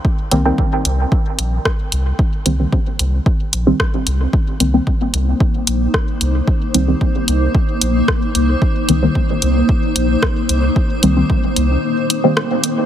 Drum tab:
HH |-x-x-x-x|-x-x-x-x|-x-x-x-x|-x-x-x-x|
SD |------r-|------r-|------r-|------r-|
BD |o-o-o-o-|o-o-o-o-|o-o-o-o-|o-o-o-o-|

HH |-x-x-x-x|-x-x-x-x|
SD |------r-|------r-|
BD |o-o-o-o-|o-o-----|